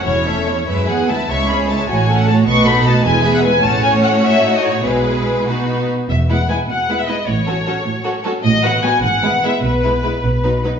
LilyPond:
<<
  \new Staff \with { instrumentName = "Violin section" } { \time 6/8 \key e \mixolydian \tempo 4. = 100 cis''4. r8 fis''8 a''8 | \key e \major cis'''8 b''8 a''8 gis''8. fis''16 a''8 | cis'''8 b''8 a''8 gis''8. fis''16 gis''8 | a''8 gis''8 fis''8 e''8. dis''16 cis''8 |
b'4. r4. | e''8 fis''8 gis''8 fis''8. e''16 dis''8 | cis''2~ cis''8 r8 | dis''8 fis''8 gis''8 fis''4 e''8 |
b'2~ b'8 r8 | }
  \new Staff \with { instrumentName = "Violin section" } { \time 6/8 \key e \mixolydian cis''8 <a' e''>8 cis''8 <b' e''>8 <gis' gis''>8 <b' e''>8 | \key e \major <cis'' e''>8 <gis' cis''>8 <cis'' e''>8 <fis' cis''>8 <a' fis''>8 <fis' cis''>8 | <b' dis''>8 <a' fis''>8 <b' dis''>8 b'8 <gis' e''>8 b'8 | <fis' cis''>2. |
<gis' b'>4. <fis' b'>4 r8 | r8 <e' b'>8 <e' b'>8 r8 <e' b'>8 <e' b'>8 | r8 <fis' a'>8 <fis' a'>8 r8 <fis' a'>8 <fis' a'>8 | r8 <fis' b'>8 <fis' b'>8 r8 <e' b'>8 <e' b'>8 |
r8 <e' b'>8 <e' b'>8 r8 <dis' b'>8 <dis' b'>8 | }
  \new Staff \with { instrumentName = "Viola section" } { \time 6/8 \key e \mixolydian << { e'8 cis'8 e'8 e'8 gis'8 e'8 | \key e \major e'8 cis'8 e'8 fis'8 a'8 fis'8 | fis'8 dis'8 fis'8 e'8 gis'8 e'8 | cis'2 dis'4 |
e'4. dis'4 r8 | r8 b8 b8 r8 b8 b8 | r8 cis'8 cis'8 r8 cis'8 cis'8 | r8 b8 b8 r8 b8 b8 |
r8 b8 b8 r8 b8 b8 | } \\ { cis'8 a8 cis'8 gis8 b8 gis8 | gis8 cis'8 gis8 a8 cis'8 a8 | a8 b8 a8 gis8 b8 gis8 | a2. |
gis4. b4 r8 | r8 gis8 gis8 r8 gis8 gis8 | r8 fis8 fis8 r8 fis8 fis8 | r8 fis8 fis8 r8 gis8 gis8 |
r8 gis8 gis8 r8 fis8 fis8 | } >> }
  \new Staff \with { instrumentName = "Cello section" } { \clef bass \time 6/8 \key e \mixolydian e,4. fis,8 e,8 d,8 | \key e \major cis,4. a,4. | b,4. e,4. | a,2. |
b,2~ b,8 r8 | e,4. b,4. | a,4. a,4. | a,4. gis,4. |
b,4. b,4. | }
  \new Staff \with { instrumentName = "Double bass section" } { \clef bass \time 6/8 \key e \mixolydian e,,4 r2 | \key e \major cis,4 r8 a,,4 r8 | b,,4 r8 e,,4 r8 | a,,4 r2 |
b,,4 r2 | e,,4 r2 | a,,4 r2 | a,,4 r8 gis,,4 r8 |
b,,4 r8 b,,4 r8 | }
>>